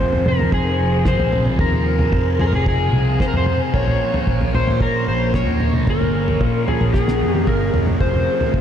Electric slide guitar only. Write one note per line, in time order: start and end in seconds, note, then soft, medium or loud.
0.00 0.28 C5 medium
0.28 0.53 A#4 medium
0.54 1.07 G#4 medium
1.08 1.44 C5 medium
1.60 2.41 A#4 medium
2.41 2.46 G#4 medium
2.47 2.53 A#4 medium
2.55 2.67 G#4 medium
2.68 3.21 G#4 medium
3.21 3.27 C5 loud
3.28 3.35 A#4 medium
3.37 3.60 C5 loud
3.74 4.55 C#5 loud
4.55 4.79 C5 medium
4.82 5.08 A#4 loud
5.08 5.35 C5 medium
5.35 5.72 C#5 medium
5.90 6.71 A#4 medium
6.68 6.92 G#4 medium
6.93 7.34 G#4 medium
7.34 7.49 G4 medium
7.48 7.85 A#4 medium
8.01 8.61 C5 loud